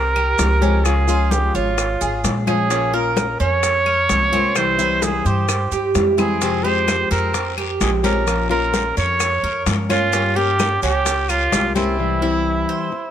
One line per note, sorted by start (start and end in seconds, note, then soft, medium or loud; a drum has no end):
0.00 0.35 C2 medium
0.00 0.15 C4 medium
0.00 0.86 A#4 loud
0.16 0.61 G4 medium
0.16 high conga soft
0.16 claves medium
0.38 1.49 C#2 medium
0.38 0.61 F3 soft
0.38 0.61 G#3 soft
0.38 0.61 C4 soft
0.38 0.60 G4 soft
0.38 high bongo medium
0.38 low bongo medium
0.38 high conga medium
0.38 maracas medium
0.61 0.84 F3 medium
0.61 0.84 G#3 medium
0.61 0.84 C4 medium
0.61 1.07 C#4 medium
0.61 0.84 G4 medium
0.61 high conga medium
0.61 maracas soft
0.84 1.07 C#3 medium
0.84 1.07 F3 medium
0.84 1.08 G#3 medium
0.84 1.07 C#4 medium
0.84 1.06 F4 medium
0.84 1.32 G#4 loud
0.84 high bongo medium
0.84 high conga soft
0.84 claves medium
0.84 maracas medium
1.08 1.77 F3 soft
1.08 1.77 G#3 medium
1.08 1.78 C#4 medium
1.08 1.78 F4 medium
1.08 1.54 F4 medium
1.08 high bongo soft
1.08 high conga soft
1.08 maracas soft
1.31 1.56 G4 medium
1.31 high bongo medium
1.31 high conga medium
1.31 maracas medium
1.55 1.98 G#1 medium
1.55 2.24 F4 medium
1.55 2.00 C#5 medium
1.55 high bongo soft
1.55 high conga soft
1.55 maracas soft
1.77 muted nylon-string guitar stroke medium
1.77 high bongo medium
1.77 high conga soft
1.77 claves medium
1.77 maracas medium
2.01 2.23 G#1 medium
2.01 2.46 G#4 medium
2.01 high conga soft
2.01 maracas medium
2.24 3.34 A#1 medium
2.24 2.46 F3 soft
2.24 2.47 G#3 soft
2.24 2.47 C#4 soft
2.24 2.46 F4 soft
2.24 high bongo medium
2.24 low bongo medium
2.24 high conga medium
2.24 maracas medium
2.47 2.69 F3 medium
2.47 2.70 G#3 medium
2.47 2.69 C#4 medium
2.47 2.70 C#4 medium
2.47 2.70 F4 medium
2.47 2.96 G#4 medium
2.47 high bongo soft
2.47 high conga medium
2.47 claves medium
2.47 maracas soft
2.70 2.93 F3 medium
2.70 2.93 A#3 medium
2.70 2.93 C#4 medium
2.70 2.93 F4 medium
2.70 high bongo medium
2.70 high conga soft
2.70 maracas medium
2.94 3.62 A#3 soft
2.94 3.63 C#4 medium
2.94 3.62 F4 medium
2.94 3.39 A#4 medium
2.94 3.40 A#4 medium
2.94 high conga soft
3.17 high bongo medium
3.17 high conga medium
3.17 claves medium
3.17 maracas medium
3.40 4.06 F2 medium
3.40 3.85 C#4 medium
3.40 4.58 C#5 loud
3.40 high conga soft
3.40 maracas soft
3.63 muted nylon-string guitar stroke medium
3.63 high bongo medium
3.63 high conga soft
3.63 maracas medium
3.86 4.31 A#4 medium
3.86 high conga soft
3.86 claves medium
4.09 5.19 C2 medium
4.09 4.32 F3 soft
4.09 4.32 A#3 soft
4.09 4.32 C#4 soft
4.09 4.31 F4 soft
4.09 high bongo medium
4.09 low bongo medium
4.09 high conga medium
4.09 maracas medium
4.32 4.56 A#3 soft
4.32 4.78 C4 medium
4.32 4.55 C#4 medium
4.32 4.55 F4 medium
4.32 high conga medium
4.32 maracas soft
4.55 4.78 C3 medium
4.55 4.78 E3 medium
4.55 4.79 G3 medium
4.55 4.78 C4 medium
4.55 4.77 E4 medium
4.55 5.05 C5 medium
4.55 high bongo medium
4.55 high conga soft
4.55 claves medium
4.55 maracas medium
4.79 5.48 E3 medium
4.79 5.48 G3 medium
4.79 5.49 C4 medium
4.79 5.48 E4 medium
4.79 5.24 E4 medium
4.79 high bongo soft
4.79 high conga soft
4.79 maracas soft
5.02 5.28 G#4 medium
5.02 high bongo medium
5.02 high conga medium
5.02 maracas medium
5.25 5.69 G2 medium
5.25 5.96 G4 medium
5.25 5.71 C5 medium
5.25 high bongo soft
5.25 high conga soft
5.25 maracas soft
5.49 muted nylon-string guitar stroke medium
5.49 high bongo medium
5.49 high conga soft
5.49 claves medium
5.49 maracas medium
5.72 5.93 G2 medium
5.72 6.17 G4 medium
5.72 high conga soft
5.72 maracas soft
5.94 7.05 F2 medium
5.94 6.17 E3 soft
5.94 6.17 G3 soft
5.94 6.17 C4 soft
5.94 6.16 E4 soft
5.94 high bongo medium
5.94 low bongo medium
5.94 high conga medium
5.94 maracas medium
6.18 6.41 E3 soft
6.18 6.41 G3 soft
6.18 6.40 C4 medium
6.18 6.41 C4 medium
6.18 6.40 E4 medium
6.18 6.66 G#4 medium
6.18 high bongo soft
6.18 high conga medium
6.18 claves medium
6.18 maracas soft
6.41 6.64 C3 medium
6.41 6.64 F3 medium
6.41 6.64 G#3 medium
6.41 6.64 C4 medium
6.41 6.63 G4 medium
6.41 high bongo medium
6.41 high conga soft
6.41 long guiro medium
6.41 maracas medium
6.64 7.34 F3 soft
6.64 7.33 G#3 medium
6.64 7.33 C4 medium
6.64 7.33 G4 medium
6.64 7.10 G4 medium
6.64 7.11 C5 loud
6.64 high conga soft
6.88 high bongo medium
6.88 high conga medium
6.88 short guiro medium
6.88 claves medium
6.88 maracas medium
7.11 7.77 F2 medium
7.11 7.56 C4 medium
7.11 7.54 A#4 medium
7.11 high conga soft
7.11 short guiro medium
7.11 maracas soft
7.34 muted nylon-string guitar stroke medium
7.34 high bongo medium
7.34 high conga soft
7.34 long guiro medium
7.34 maracas medium
7.58 8.03 G4 medium
7.58 high conga soft
7.58 claves medium
7.80 8.91 A#1 medium
7.80 8.03 F3 soft
7.80 8.03 G#3 soft
7.80 8.03 C4 soft
7.80 8.02 G4 soft
7.80 7.91 G#4 medium
7.80 high bongo medium
7.80 low bongo medium
7.80 high conga medium
7.80 short guiro medium
7.80 maracas medium
8.03 8.25 F3 medium
8.03 8.27 G#3 medium
8.03 8.26 C4 medium
8.03 8.49 C#4 medium
8.03 8.26 G4 medium
8.03 8.47 A#4 medium
8.03 high conga medium
8.03 short guiro medium
8.03 maracas soft
8.27 8.49 F3 medium
8.27 8.50 A#3 medium
8.27 8.50 C#4 medium
8.27 8.49 F4 medium
8.27 high bongo medium
8.27 high conga soft
8.27 long guiro medium
8.27 claves medium
8.27 maracas medium
8.50 9.20 A#3 medium
8.50 9.20 C#4 medium
8.50 9.19 F4 medium
8.50 8.96 F4 medium
8.50 8.94 A#4 medium
8.50 high bongo soft
8.50 high conga soft
8.74 high bongo medium
8.74 high conga medium
8.74 short guiro medium
8.74 maracas medium
8.97 9.40 F2 medium
8.97 9.42 C#5 medium
8.97 9.63 C#5 medium
8.97 high bongo soft
8.97 high conga soft
8.97 short guiro medium
8.97 maracas soft
9.20 muted nylon-string guitar stroke medium
9.20 high bongo medium
9.20 high conga soft
9.20 long guiro medium
9.20 claves medium
9.20 maracas medium
9.43 9.65 F2 medium
9.43 9.89 A#4 medium
9.43 high conga soft
9.66 10.76 G2 medium
9.66 9.89 F3 soft
9.66 9.89 A#3 soft
9.66 9.89 C#4 soft
9.66 9.88 F4 soft
9.66 high bongo medium
9.66 low bongo medium
9.66 high conga medium
9.66 short guiro medium
9.66 maracas medium
9.90 10.12 A#3 medium
9.90 10.12 C#4 medium
9.90 10.12 F4 medium
9.90 10.38 F4 loud
9.90 high bongo soft
9.90 high conga medium
9.90 short guiro medium
9.90 claves medium
9.90 maracas soft
10.12 10.35 G3 medium
10.12 10.36 A#3 medium
10.12 10.36 C#4 medium
10.12 10.35 G4 medium
10.12 high bongo medium
10.12 high conga soft
10.12 long guiro medium
10.12 maracas medium
10.36 11.05 A#3 soft
10.36 11.05 C#4 medium
10.36 10.82 G4 loud
10.36 11.06 G4 medium
10.36 10.81 A#4 medium
10.36 high conga soft
10.59 high bongo medium
10.59 high conga medium
10.59 short guiro medium
10.59 claves medium
10.59 maracas medium
10.83 11.48 C#2 medium
10.83 11.28 C#4 medium
10.83 11.31 G4 medium
10.83 high conga soft
10.83 short guiro medium
10.83 maracas soft
11.06 muted nylon-string guitar stroke medium
11.06 high bongo medium
11.06 high conga soft
11.06 long guiro medium
11.06 maracas medium
11.29 11.75 F4 loud
11.29 11.75 A#4 medium
11.29 high conga soft
11.29 claves medium
11.29 maracas medium
11.52 12.63 C2 medium
11.52 11.75 G3 soft
11.52 11.75 A#3 soft
11.52 11.75 C#4 soft
11.52 11.74 G4 soft
11.52 high bongo medium
11.52 low bongo medium
11.52 high conga medium
11.52 short guiro medium
11.52 maracas medium
11.75 11.99 A#3 medium
11.75 12.21 C4 medium
11.75 11.98 C#4 medium
11.75 13.11 E4 medium
11.75 11.98 G4 medium
11.75 high conga medium
11.75 short guiro medium
11.75 maracas soft
11.98 12.21 C3 medium
11.98 12.21 E3 medium
11.98 12.22 G3 medium
11.98 12.21 C4 medium
11.98 12.21 E4 medium
12.22 12.91 E3 medium
12.22 12.91 G3 medium
12.22 12.91 C4 medium
12.22 12.91 E4 medium
12.22 12.67 E4 medium
12.69 13.11 C5 medium
12.92 muted nylon-string guitar stroke medium